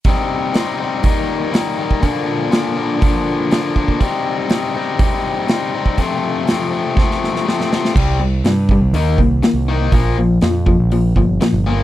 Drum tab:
CC |----------------|----------------|----------------|----------------|
HH |o---o---o---o---|o---o---o---o---|o---o---o---o---|o---o-----------|
SD |----o-------o---|----o-------o---|----o-------o---|----o---oooooooo|
BD |o-------o------o|o-------o-----oo|o-------o------o|o-------o-------|

CC |x---------------|----------------|
HH |----o---o---o---|o---o---o---o---|
SD |----o-------o---|----o-------o---|
BD |o-----o---o-----|o-----o---o-----|